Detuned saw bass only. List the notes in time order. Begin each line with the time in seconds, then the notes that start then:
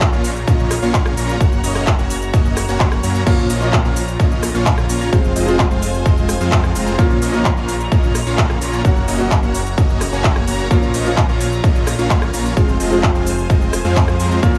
Already playing: A#1
0.13 A#1
0.48 A#1
0.82 A#1
1.17 A#1
1.41 F#1
1.64 F#1
1.99 F#1
2.34 F#1
2.68 F#1
3.03 F#2
3.27 A#1
3.50 A#1
3.85 A#1
4.20 A#1
4.55 A#1
4.89 A#1
5.13 F1
5.36 F1
5.71 F1
6.06 F1
6.41 F2
6.75 F1
6.99 A#1
7.22 A#1
7.57 A#1
7.92 A#1
8.27 A#1
8.62 A#1
8.85 F#1
9.08 F#1
9.43 F#1
9.78 F#1
10.13 F#1
10.48 F#1
10.71 A#1
10.94 A#1
11.29 A#1
11.64 A#1
11.99 A#1
12.34 A#1
12.57 F1
12.80 F1
13.15 F1
13.50 F1
13.85 F2
14.20 F2
14.43 A#1